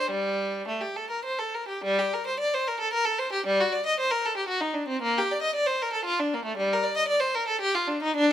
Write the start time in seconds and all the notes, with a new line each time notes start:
0.00 C5
0.11 G3
0.68 A3
0.81 G4
0.96 A4
1.10 A#4
1.25 C5
1.39 A4
1.54 A#4
1.68 G4
1.84 G3
1.99 G4
2.14 A#4
2.27 C5
2.40 D5
2.54 C5
2.68 A#4
2.80 A4
2.93 A#4
3.05 A4
3.19 C5
3.32 G4
3.46 G3
3.60 F#4
3.72 D5
3.86 D#5
4.00 C5
4.11 A#4
4.25 A4
4.37 G4
4.48 F#4
4.61 D#4
4.74 D4
4.88 C4
5.02 A#3
5.18 G4
5.32 D5
5.42 D#5
5.55 D5
5.66 C5
5.82 A#4
5.93 A4
6.05 F4
6.19 D4
6.34 A#3
6.45 A3
6.57 G3
6.73 A#4
6.83 D5
6.97 D#5
7.08 D5
7.20 C5
7.35 A#4
7.47 A4
7.61 G4
7.75 F4
7.88 D4
8.02 D#4
8.16 D4